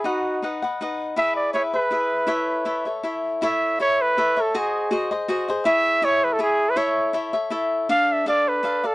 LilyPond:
<<
  \new Staff \with { instrumentName = "Trumpet" } { \time 3/4 \key a \major \tempo 4 = 161 fis'4 r2 | e''8 d''8 cis''8 b'4.~ | b'2 r4 | e''4 cis''8 b'4 a'8 |
gis'4 r2 | e''4 cis''8 b'16 a'16 gis'8. b'16 | cis''4 r2 | f''8 e''8 d''8 b'4 a'8 | }
  \new Staff \with { instrumentName = "Cavaquinho" } { \time 3/4 \key a \major <dis' b' dis'' fis''>4 <dis' b' dis'' fis''>8 <b' dis'' fis''>8 <dis' b' dis'' fis''>4 | <e' gis' b' e''>4 <e' gis' b' e''>8 <gis' b' e''>8 <e' gis' b' e''>4 | <e' a' cis'' e''>4 <e' a' cis'' e''>8 <a' cis'' e''>8 <e' a' cis'' e''>4 | <e' a' cis'' e''>4 <e' a' cis'' e''>4 <e' a' cis'' e''>8 <a' cis'' e''>8 |
<fis' gis' bis' dis''>4 <fis' gis' bis' dis''>8 <gis' bis' dis''>8 <fis' gis' bis' dis''>8 <gis' bis' dis''>8 | <e' gis' cis'' e''>4 <e' gis' cis'' e''>4 <e' gis' cis'' e''>4 | <e' a' cis'' e''>4 <e' a' cis'' e''>8 <a' cis'' e''>8 <e' a' cis'' e''>4 | <d' a' d'' f''>4 <d' a' d'' f''>4 <d' a' d'' f''>8 <a' d'' f''>8 | }
>>